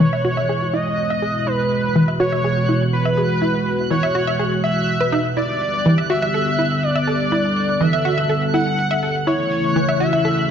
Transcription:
Already playing: B2 E3 G#3 E4 F#6
0.00 E3 C#5, closed hi-hat
0.13 E5
0.25 F#4, open hi-hat
0.37 E5
0.49 G#4, closed hi-hat
0.62 closed hi-hat
0.73 E4 D#5, open hi-hat
0.86 closed hi-hat
0.98 closed hi-hat
1.10 E5, closed hi-hat
1.22 G#4, open hi-hat
1.35 closed hi-hat
1.46 E4 F#4 B4, closed hi-hat
1.59 closed hi-hat
1.71 open hi-hat
1.84 closed hi-hat
1.95 E3, closed hi-hat
2.08 E5
2.20 F#4 C#5, open hi-hat
2.32 E5, closed hi-hat
2.44 G#4, closed hi-hat
2.57 closed hi-hat
2.69 E4, open hi-hat
2.81 closed hi-hat
2.93 B4, closed hi-hat
3.05 E5
3.17 G#4, open hi-hat
3.30 closed hi-hat
3.42 E4, closed hi-hat
3.54 closed hi-hat
3.66 open hi-hat
3.79 closed hi-hat
3.90 E3 C#5, closed hi-hat
4.03 E5
4.15 F#4, open hi-hat
4.27 E5, closed hi-hat
4.39 G#4, closed hi-hat
4.52 closed hi-hat
4.64 E5, open hi-hat
4.76 closed hi-hat
4.88 closed hi-hat
5.01 B4
5.12 D#4, open hi-hat
5.25 closed hi-hat
5.37 D3 G3 B3 E4 G4 D5, closed hi-hat
5.49 closed hi-hat
5.61 open hi-hat
5.86 E3, closed hi-hat
5.98 E5
6.10 F#4 E5, open hi-hat
6.22 E5
6.34 A4, closed hi-hat
6.47 closed hi-hat
6.59 E4, open hi-hat
6.71 closed hi-hat
6.83 D5, closed hi-hat
6.96 E5, closed hi-hat
7.07 A4, open hi-hat
7.20 closed hi-hat
7.32 E4 A4, closed hi-hat
7.44 closed hi-hat
7.56 open hi-hat
7.69 closed hi-hat
7.81 E3 E5, closed hi-hat
7.93 E5
8.05 F#4, open hi-hat
8.18 E5, closed hi-hat
8.29 A4, closed hi-hat
8.42 closed hi-hat
8.54 E4 F#5, open hi-hat
8.67 closed hi-hat
8.78 closed hi-hat
8.91 E5, closed hi-hat
9.03 A4, open hi-hat
9.15 closed hi-hat
9.27 C#3 E3 A3 E4 C#5, closed hi-hat
9.40 closed hi-hat
9.52 open hi-hat
9.64 closed hi-hat
9.76 E3, closed hi-hat
9.89 E5
10.00 F#4 E5, open hi-hat
10.13 E5, closed hi-hat
10.25 A4, closed hi-hat
10.37 closed hi-hat

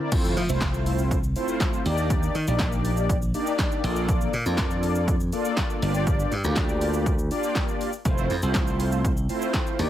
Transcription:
Already playing: swell
0.12 F2 A3 C4 E4 F4 C5, kick, closed hi-hat, crash, impact, shaker
0.24 shaker
0.37 F3, open hi-hat, shaker
0.49 C2 A3 C4 E4 F4 C5, shaker
0.61 kick, snare, clap, closed hi-hat, shaker
0.74 shaker
0.86 open hi-hat, shaker
0.99 shaker
1.11 kick, closed hi-hat, shaker
1.23 shaker
1.36 A3 C4 E4 F4 C5, open hi-hat, shaker
1.48 shaker
1.60 kick, snare, clap, closed hi-hat, shaker
1.73 shaker
1.85 D#2 A#3 D4 D#4 G4 D5, open hi-hat, shaker
1.98 shaker
2.10 kick, closed hi-hat, shaker
2.23 shaker
2.35 D#3, open hi-hat, shaker
2.47 A#1 A#3 D4 D#4 G4 D5, shaker
2.59 kick, snare, clap, closed hi-hat, shaker
2.72 shaker
2.85 open hi-hat, shaker
2.97 shaker
3.09 kick, closed hi-hat, shaker
3.22 shaker
3.34 A#3 D4 D#4 G4 D5, open hi-hat, shaker
3.47 shaker
3.59 kick, snare, clap, closed hi-hat, shaker
3.72 shaker
3.84 A#1 A#3 D4 F4 A4 D5, open hi-hat, shaker
3.96 shaker
4.09 kick, closed hi-hat, shaker
4.21 shaker
4.33 A#2, open hi-hat, shaker
4.46 F2 A#3 D4 F4 A4 D5, shaker
4.57 kick, snare, clap, closed hi-hat, shaker
4.70 shaker
4.83 open hi-hat, shaker
4.95 shaker
5.08 kick, closed hi-hat, shaker
5.20 shaker
5.32 A#3 D4 F4 A4 D5, open hi-hat, shaker
5.45 shaker
5.57 kick, snare, clap, closed hi-hat, shaker
5.70 shaker
5.82 G1 A#3 D4 F4 G4 D5, open hi-hat, shaker
5.94 shaker
6.07 kick, closed hi-hat, shaker
6.19 shaker
6.32 G2, open hi-hat, shaker
6.44 D2 A#3 D4 F4 G4 D5, shaker
6.56 kick, snare, clap, closed hi-hat, shaker
6.69 shaker
6.81 open hi-hat, shaker
6.94 shaker
7.06 kick, closed hi-hat, shaker
7.19 shaker
7.31 A#3 D4 F4 G4 D5, open hi-hat, shaker
7.43 shaker
7.55 kick, snare, clap, closed hi-hat, shaker
7.68 shaker
7.81 open hi-hat, shaker
7.93 shaker
8.05 F1 A3 C4 E4 F4 C5, kick, closed hi-hat, shaker
8.18 shaker
8.30 F2, open hi-hat, shaker
8.42 C2 A3 C4 E4 F4 C5, shaker
8.54 kick, snare, clap, closed hi-hat, shaker
8.67 shaker
8.80 open hi-hat, shaker
8.92 shaker
9.05 kick, closed hi-hat, shaker
9.17 shaker
9.29 A3 C4 E4 F4 C5, open hi-hat, shaker
9.42 shaker
9.54 kick, snare, clap, closed hi-hat, shaker
9.67 shaker
9.79 D#2 A#3 D4 D#4 G4 D5, open hi-hat, shaker

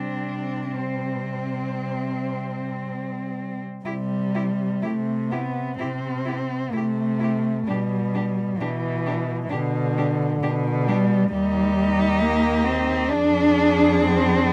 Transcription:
Already playing: C3 G3 C4 D4
0.76 G3 C4
3.85 C3 G3 E4 G4
4.35 E4 G4
4.82 C3 A3 E4 G4
5.31 B3 E4 G4
5.79 C3 C4 E4 G4
6.25 E4 G4
6.73 C3 A3 E4 G4
7.20 E4 G4
7.67 B2 G3 D4 G4
8.15 D4 G4
8.58 B2 E3 D4 G4
9.06 D4 G4
9.43 E3
9.49 B2 D3 D4 G4
9.98 D4 G4
10.42 B2 D4 G4
10.87 G3 D4 G4
11.32 D#2 G3 D#4 G4
12.21 A#3
12.65 C4
13.09 F2 D4 G#4
14.03 C4

